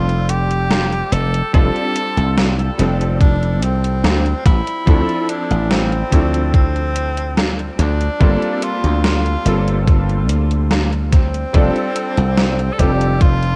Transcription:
Already playing: F1 G3 C4 D4 F4 A4
0.09 closed hi-hat
0.29 G4, closed hi-hat
0.51 closed hi-hat
0.71 snare, closed hi-hat
0.92 closed hi-hat
1.12 F1 A4, closed hi-hat
1.34 closed hi-hat
1.53 F1 G3 C4 D4 F4 A4, kick, closed hi-hat
1.76 closed hi-hat
1.96 closed hi-hat
2.17 C2, closed hi-hat
2.38 snare, closed hi-hat
2.59 closed hi-hat
2.78 F1 F3 G3 C4 D4 A4, closed hi-hat
3.01 closed hi-hat
3.21 D4, kick, closed hi-hat
3.43 closed hi-hat
3.62 C2 C4, closed hi-hat
3.84 closed hi-hat
4.04 D2, snare, closed hi-hat
4.26 closed hi-hat
4.46 A1 E4, kick, closed hi-hat
4.67 closed hi-hat
4.86 D2 F3 C4 D4 E4 A4, kick, closed hi-hat
5.09 closed hi-hat
5.29 D4, closed hi-hat
5.51 A1, closed hi-hat
5.71 C4, snare, closed hi-hat
5.92 closed hi-hat
6.11 D2 F3 C4 D4 E4 A4, kick, closed hi-hat
6.34 closed hi-hat
6.54 C4, kick, closed hi-hat
6.76 closed hi-hat
6.96 closed hi-hat
7.17 closed hi-hat
7.37 snare, closed hi-hat
7.59 closed hi-hat
7.79 D2 D4, closed hi-hat
8.01 closed hi-hat
8.20 G1 G3 A#3 C4 F4 A4, kick, closed hi-hat
8.42 closed hi-hat
8.62 F4, closed hi-hat
8.84 D2, closed hi-hat
9.04 F4, snare, closed hi-hat
9.26 closed hi-hat
9.45 G1 G3 A#3 C4 F4 A4, closed hi-hat
9.68 closed hi-hat
9.87 kick, closed hi-hat
10.09 closed hi-hat
10.29 D2, closed hi-hat
10.51 closed hi-hat
10.71 snare, closed hi-hat
10.93 closed hi-hat
11.12 C4, kick, closed hi-hat
11.34 closed hi-hat
11.53 F1 G3 C4 D4 F4 A4, kick, closed hi-hat
11.76 closed hi-hat
11.96 closed hi-hat
12.17 C2, closed hi-hat
12.37 snare, closed hi-hat
12.59 closed hi-hat
12.73 A4
12.78 F1 G3 C4 D4 F4 G4 A4, kick, closed hi-hat
13.01 closed hi-hat
13.21 F4, kick, closed hi-hat
13.43 closed hi-hat

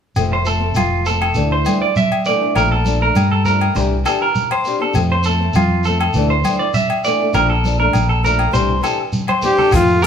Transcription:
0.16 F1 F3 A3 C4, muted conga, low agogo, shekere
0.33 C5
0.45 F3 A3 C4 A4, shekere
0.60 A3 C4
0.75 F1 F4, high conga, low agogo, shekere
1.05 F3 A3 C4 A4, shekere
1.22 A4, low agogo
1.34 D2 E3 A3 D4, muted conga, shekere
1.52 C5
1.64 E3 A3 D4, muted conga, high conga, low agogo, shekere
1.82 D5
1.96 E5, high conga, shekere
2.12 low agogo
2.25 E3 A3 D4 D5, shekere
2.42 A3 D4
2.55 A#1 F3 A3 D4 A#4, muted conga, low agogo, shekere
2.72 A4
2.84 F3 A3 D4, high conga, shekere
3.01 A3 D4 A#4
3.15 G2, high conga, low agogo, shekere
3.31 A4
3.45 F3 A3 D4 A#4, muted conga, low conga, shekere
3.61 low agogo
3.75 C2 E3 D4 G4, muted nylon-string guitar stroke, muted clean electric guitar stroke, muted conga, shekere
4.05 E3 D4 G4 A4, low agogo, shekere
4.22 A#4
4.35 high conga, shekere
4.51 C5, low agogo
4.65 C4 D4 G4, muted nylon-string guitar stroke, shekere
4.79 C4 D4 G4 A4
4.93 F2 F3 A3 C4, muted conga, low agogo, shekere
5.12 C5
5.23 F3 A3 C4 A4, shekere
5.40 A3 C4
5.54 F2 F4, high conga, low agogo, shekere
5.84 F3 A3 A4, muted conga, shekere
5.89 C4
6.00 A4, low agogo
6.13 D2 E3 A3 D4, muted conga, shekere
6.30 C5
6.44 E3 A3, muted conga, high conga, low agogo, shekere
6.48 D4
6.59 D5
6.74 E5, high conga, shekere
6.90 low agogo
7.04 E3 A3 D4 D5, shekere
7.20 A3 D4
7.33 A#1 F3 A3 D4 A#4, muted conga, low agogo, shekere
7.50 A4
7.64 F3 D4, muted nylon-string guitar stroke, high conga, shekere
7.79 A3 D4 A#4
7.93 A#1, high conga, low agogo, shekere
8.09 A4
8.23 F3 A3 D4 A#4, muted conga, low conga, shekere
8.39 low agogo
8.51 C2 E3 C4 D4 G4 C5, muted conga, shekere
8.81 E3 C4 D4 G4 A4, muted conga, low agogo, shekere
9.13 high conga, shekere
9.28 C5, high conga, low agogo
9.41 E3 C4 D4 G4, low conga, shekere
9.57 C4 D4 G4 A4, low conga
9.71 F2 A3 C4 F4, muted clean electric guitar stroke, kick, cross-stick, closed hi-hat, muted conga, low agogo, shekere
9.88 shekere
10.02 A3 C4 A4 A#4, closed hi-hat, shekere

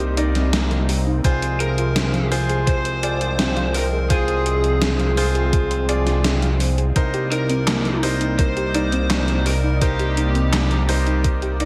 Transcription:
Already playing: C2 C3 G3 A#3 C4 D#4 G4 A#4 C5
0.00 G4, closed hi-hat
0.17 D#4 A#4 D5, closed hi-hat
0.35 C4, snare, closed hi-hat
0.53 A#3, snare, closed hi-hat
0.71 A#4, closed hi-hat
0.89 G4, open hi-hat
1.06 D#4
1.24 F3 G#3 C4 F4 G#4 C5 F5, kick, closed hi-hat
1.42 C5, closed hi-hat
1.60 G#4 A#4, closed hi-hat
1.78 F4, closed hi-hat
1.96 C4, snare, closed hi-hat
2.14 F5, closed hi-hat
2.32 F4 G#4 C5, open hi-hat
2.49 G#4, closed hi-hat
2.67 C5 F5, kick, closed hi-hat
2.85 C5, closed hi-hat
3.03 F4 G#4 D5, closed hi-hat
3.21 F4, closed hi-hat
3.39 C4, snare, closed hi-hat
3.57 F5, closed hi-hat
3.74 A#4 C5, open hi-hat
3.92 G#4
4.10 F4 G#4 C5 F5, kick, closed hi-hat
4.28 C5, closed hi-hat
4.46 G#4, closed hi-hat
4.64 F4, closed hi-hat
4.82 C4, snare, closed hi-hat
4.99 F5, closed hi-hat
5.17 F4 G#4 C5, open hi-hat
5.35 G#4, closed hi-hat
5.53 F5, kick, closed hi-hat
5.71 C5, closed hi-hat
5.89 F4 G#4 D5, closed hi-hat
6.06 F4, snare, closed hi-hat
6.24 C4, snare, closed hi-hat
6.42 F5, closed hi-hat
6.60 C5, open hi-hat
6.78 G#4, closed hi-hat
6.96 C2 C3 G3 A#3 D#4 A#4 C5 D5, kick, closed hi-hat
7.14 G4, closed hi-hat
7.31 D#4 A#4, closed hi-hat
7.49 C4, closed hi-hat
7.67 A#3, snare, clap, closed hi-hat
7.85 A#4, closed hi-hat
8.03 D#4 G4 A#4 C5, open hi-hat
8.21 D#4, closed hi-hat
8.39 A#4 C5, kick, closed hi-hat
8.57 G4, closed hi-hat
8.74 D#4 A#4 D5, closed hi-hat
8.92 C4, closed hi-hat
9.10 A#3, snare, clap, closed hi-hat
9.28 A#4, closed hi-hat
9.46 G4 A#4, open hi-hat
9.64 D#4
9.81 D#4 G4 A#4 C5, kick, closed hi-hat
9.99 G4, closed hi-hat
10.17 D#4, closed hi-hat
10.35 C4, closed hi-hat
10.53 A#3, snare, clap, closed hi-hat
10.71 A#4, closed hi-hat
10.89 D#4 G4 A#4 C5, open hi-hat
11.06 D#4, closed hi-hat
11.24 A#4, kick, closed hi-hat
11.42 G4, closed hi-hat
11.60 D#4 A#4 D5, closed hi-hat

